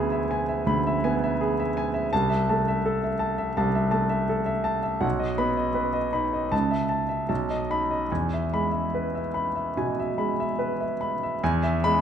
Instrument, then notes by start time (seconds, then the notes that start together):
grand piano
Already playing: D2 B3 G#4 E5 G#5 B5
0.12 E5
0.31 G#5
0.49 E5
0.66 D2 B5
0.87 E5
1.04 B3 G#5
1.24 E5
1.41 G#4
1.60 E5
1.77 G#5
1.94 E5
2.13 C2 A5
2.30 E5
2.49 A3 A5
2.68 E5
2.86 A4
3.04 E5
3.19 A5
3.38 E5
3.57 C2 A5
3.75 E5
3.91 A3 A5
4.09 E5
4.29 A4
4.46 E5
4.64 A5
4.83 E5
5.01 B1 F#5
5.19 D#5
5.38 B3 B5
5.57 D#5
5.74 B4
5.93 D#5
6.13 D#4 B5
6.33 D#5
6.52 C#2 A5
6.71 E5
6.89 A5
7.09 E5
7.29 B1 A5
7.50 D#5
7.70 D#4 B5
7.91 D#5
8.12 E2 G#5
8.33 E5
8.53 G#3 B5
8.71 E5
8.95 B4
9.15 E5
9.34 B5
9.56 E5
9.77 B2 G#5
10.00 E5
10.18 G#3 B5
10.40 E5
10.59 B4
10.81 E5
11.01 B5
11.23 E5
11.43 E2 G#5
11.63 E5
11.84 G#3 B5